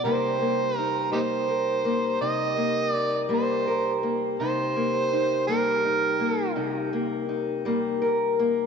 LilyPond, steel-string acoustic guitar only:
\new Staff \with { instrumentName = "Steel-string acoustic guitar" } { \time 12/8 \key c \minor \tempo 4. = 55 << { <g bes ees' bes'>8 bes8 ees'8 bes8 bes'8 bes8 ees'8 bes8 ees'8 bes8 bes'8 bes8 | ees'8 bes8 ees'8 bes8 ees'8 bes8 ees'8 bes8 ees'8 bes8 bes'8 bes8 | } \\ { c4. g4. c4. g4. | c4. g4. c4. g4. | } >> }